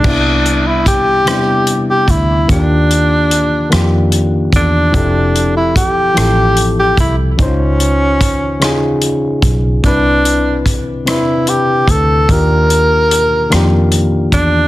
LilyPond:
<<
  \new Staff \with { instrumentName = "Tenor saxophone" } { \time 6/8 \key c \major \tempo 4. = 49 d'8. e'16 g'4~ g'16 g'16 e'8 | d'2 r8 d'8~ | d'8. e'16 g'4~ g'16 g'16 e'8 | des'2 r4 |
d'4 r8 e'8 g'8 a'8 | bes'2 r8 d'8 | }
  \new Staff \with { instrumentName = "Reed electric piano" } { \time 6/8 \key c \major <c g b d' e'>4 r8 <c g b d' e'>4 r8 | <ees bes d' f' g'>4 r8 <ees bes d' f' g'>4 r8 | <f c' e' g' a'>4 r8 <f c' e' g' a'>4 r8 | <des des' ees' e' f' c''>4 r8 <des des' ees' f' aes'>4 r8 |
<c c' d' e' b'>4 r8 <c c' d' e' b'>4 r8 | <ees bes d' f' g'>4 r8 <ees bes d' f' g'>4 r8 | }
  \new Staff \with { instrumentName = "Fingered electric bass" } { \clef bass \time 6/8 \key c \major c,4. e,4 d,8 | ees,4. f,4 e,8 | f,,4. a,,4 c,8 | des,4. ees,4 b,,8 |
c,4. e,4 d,8 | ees,4. f,4 e,8 | }
  \new DrumStaff \with { instrumentName = "Drums" } \drummode { \time 6/8 <cymc bd>8 hh8 <hh bd>8 <hh ss>8 hh8 <hh bd>8 | <hh bd>8 hh8 hh8 <hh ss>8 hh8 <hh bd>8 | <hh bd>8 hh8 <hh bd>8 <hh ss>8 hh8 <hh bd>8 | <hh bd>8 hh8 <hh bd>8 <hh ss>8 hh8 <hh bd>8 |
<hh bd>8 hh8 <hh bd>8 <hh ss>8 hh8 <hh bd>8 | <hh bd>8 hh8 hh8 <hh ss>8 hh8 <hh bd>8 | }
>>